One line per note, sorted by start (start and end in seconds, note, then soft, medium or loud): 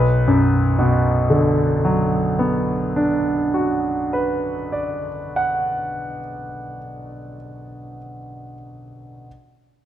0.00 3.02 B1 soft
0.00 3.01 B4 medium
0.28 3.51 F#2 soft
0.79 4.02 B2 soft
1.30 4.53 D3 soft
1.85 5.08 F#3 soft
2.39 5.62 B3 soft
2.96 6.20 D4 soft
3.54 6.77 F#4 soft
4.13 7.37 B4 soft
4.72 7.96 D5 soft
5.36 8.53 F#5 soft